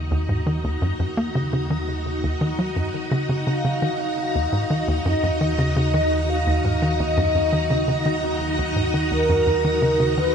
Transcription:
Already playing: D#2 D#4 F#4 D#5 A#5
0.11 D#2
0.29 G#2
0.46 D#3
0.64 D#2
0.82 F#2
1.00 F#2
1.17 A#3
1.35 C#3
1.53 C#3
1.70 D#3
2.24 D#2
2.41 D#3
2.59 F#3
2.76 F#2
3.11 C#3
3.29 C#3
3.46 D#2 C#3 F5
3.65 C#3
3.82 D#3
4.35 D#2
4.52 G#2
4.70 D#3
4.88 D#2 D#5
5.06 F#2
5.23 F#2
5.41 D#3
5.58 C#3 D#5
5.76 C#3
5.94 D#3
6.29 F5
6.47 D#2
6.65 G#2
6.82 D#3
7.00 D#2 D#5
7.17 F#2
7.35 F#2
7.53 D#3
7.70 C#3
7.88 C#3
8.06 D#3
8.59 D#2
8.76 G#2
8.94 D#3
9.11 D#2 A#4
9.29 F#2
9.47 F#2
9.65 D#3
9.82 C#3
10.00 C#3
10.17 D#3 B4

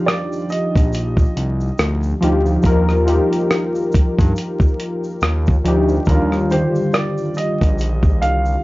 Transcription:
Already playing: F3 D4 D#4 F4 G4
0.06 D5, cross-stick, closed hi-hat, shaker
0.33 shaker
0.49 D#5, closed hi-hat, shaker
0.75 A#1, kick, closed hi-hat, shaker
0.93 closed hi-hat, shaker
1.17 kick, shaker
1.36 C2, closed hi-hat
1.61 shaker
1.78 D2, cross-stick, closed hi-hat, shaker
2.03 shaker
2.21 D2 F3 D#4 F4 G4, closed hi-hat
2.46 shaker
2.63 D#2 F3 D#4 F4 A#4, kick, closed hi-hat, shaker
2.89 cross-stick, shaker
3.06 F3 D#4 F4 G4, closed hi-hat, shaker
3.33 closed hi-hat, shaker
3.51 cross-stick, closed hi-hat, shaker
3.75 shaker
3.92 kick, closed hi-hat, shaker
4.18 G2, kick, closed hi-hat, shaker
4.36 closed hi-hat, shaker
4.60 kick, shaker
4.80 closed hi-hat
5.04 shaker
5.21 D#2, cross-stick, closed hi-hat, shaker
5.46 kick, shaker
5.64 D2 F3 D4 D#4 G4, closed hi-hat
5.89 shaker
6.05 D#2 D#3 G3 D4 A#4, kick, closed hi-hat, shaker
6.11 F4
6.32 cross-stick, shaker
6.50 D3 D#3 G3 G4 C5, closed hi-hat, shaker
6.75 shaker
6.94 D5, cross-stick, closed hi-hat, shaker
7.18 shaker
7.34 D#5, closed hi-hat, shaker
7.61 A#1, kick, closed hi-hat, shaker
7.78 closed hi-hat, shaker
8.03 kick, shaker
8.21 C2 F5, closed hi-hat
8.46 shaker

